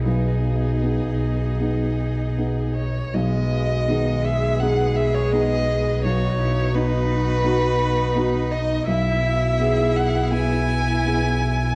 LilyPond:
<<
  \new Staff \with { instrumentName = "Violin" } { \time 4/4 \key gis \minor \tempo 4 = 83 gis'2.~ gis'8 cis''8 | dis''4. e''8 fis''8 e''16 cis''16 dis''4 | cis''4 b'2~ b'8 dis''8 | e''4. fis''8 gis''2 | }
  \new Staff \with { instrumentName = "String section" } { \time 4/4 \key gis \minor << { <b dis''>1 | <b b'>1~ | <b b'>1 | <b e''>1 | } \\ { gis'1 | gis'1 | fis'1 | e'1 | } >> }
  \new Staff \with { instrumentName = "Cello" } { \time 4/4 \key gis \minor dis'2.~ dis'8 r8 | b4 dis'8 gis'2~ gis'8 | fis'8 e'8 dis'8 fis'4. dis'4 | e'4 gis'4 e'2 | }
  \new Staff \with { instrumentName = "Felt piano" } { \time 4/4 \key gis \minor << { b'2. r4 | r1 | r1 | r1 | } \\ { b,,4 <b dis' gis'>4 <b dis' gis'>4 <b dis' gis'>4 | b,,4 <dis b gis'>4 <b dis' gis'>4 <b dis' gis'>4 | b,,4 <b dis' fis'>4 <b dis' fis'>4 <b dis' fis'>4 | b,,4 <b e' gis'>4 <b e' gis'>4 <b e' gis'>4 | } >> }
  \new Staff \with { instrumentName = "Viola" } { \time 4/4 \key gis \minor dis'2.~ dis'8 r8 | gis1 | dis'1 | e'1 | }
  \new Staff \with { instrumentName = "Double bass" } { \clef bass \time 4/4 \key gis \minor b,,1 | b,,1~ | b,,1 | b,,1 | }
>>